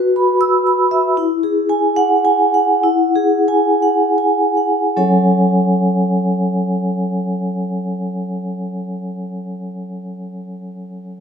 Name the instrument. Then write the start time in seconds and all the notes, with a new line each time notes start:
vibraphone
Already playing: F#4 B4
0.16 B5
0.41 E6
0.67 B5
0.91 E5
1.17 E4
1.43 G#4
1.69 G#5
1.96 F#5
2.25 G#5
2.54 F#5
2.83 E4
3.16 G#4
3.48 G#5
3.82 F#5
4.18 G#5
4.57 F#5
4.97 F#3 C#4 A4 C#5 F#5 G#5